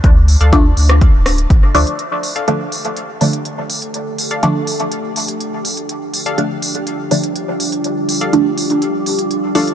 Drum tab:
HH |x-oxx-oxx-oxx-ox|x-oxx-oxx-oxx-ox|x-oxx-oxx-oxx-ox|x-oxx-oxx-oxx-ox|
SD |-------r--r-----|----------------|----------------|----------------|
BD |o---o---o---o---|----------------|----------------|----------------|

HH |x-oxx-oxx-oxx-ox|
SD |----------------|
BD |----------------|